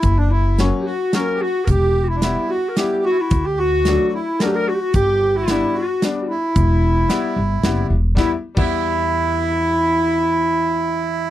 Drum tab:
CC |------------|------------|------------|------------|
HH |x---x---x---|x---x---x---|x---x---x---|x---x---x---|
SD |----o---o---|----o---o---|----o---o---|----o---o---|
BD |o-----------|o-----------|o-----------|o-----------|

CC |------------|---x--------|------------|
HH |x---x---x---|------------|------------|
SD |----o---o---|o-----------|------------|
BD |o-----------|o--o--------|------------|